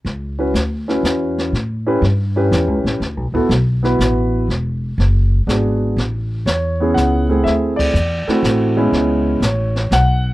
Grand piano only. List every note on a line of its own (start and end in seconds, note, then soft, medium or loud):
0.39 0.53 C#4 soft
0.39 0.53 E4 soft
0.39 0.53 F#4 soft
0.39 0.54 B4 medium
0.88 1.50 C#4 soft
0.88 1.50 E4 soft
0.88 1.51 F#4 soft
0.88 1.51 B4 medium
1.87 2.01 C#4 medium
1.87 2.01 E4 medium
1.87 2.02 G4 medium
1.87 2.02 B4 medium
2.36 2.98 C#4 soft
2.36 2.98 E4 soft
2.36 2.99 G4 medium
2.36 2.99 B4 medium
3.34 3.49 B3 medium
3.34 3.49 E4 medium
3.34 3.49 F#4 medium
3.34 3.50 A4 medium
3.83 4.45 B3 medium
3.83 4.46 E4 medium
3.83 4.46 F#4 medium
3.83 4.46 B4 medium
5.47 5.97 B3 soft
5.47 5.97 D4 soft
5.47 5.97 F#4 soft
5.47 5.98 G#4 soft
6.46 6.97 C#5 medium
6.80 7.26 B3 medium
6.80 7.26 C#4 soft
6.80 7.27 E4 soft
6.80 7.27 G#4 medium
6.94 7.41 F#5 medium
7.29 7.91 A3 medium
7.29 7.91 C4 medium
7.29 7.92 E4 soft
7.29 7.92 G#4 medium
7.44 7.51 E5 medium
7.76 8.72 D5 medium
8.28 8.74 A3 medium
8.28 8.74 C4 medium
8.28 8.74 E4 medium
8.28 8.74 F#4 medium
8.77 9.39 G#3 medium
8.77 9.39 B3 medium
8.77 9.39 C#4 medium
8.77 9.39 E4 medium
9.44 9.94 C#5 medium
9.93 10.34 F#5 medium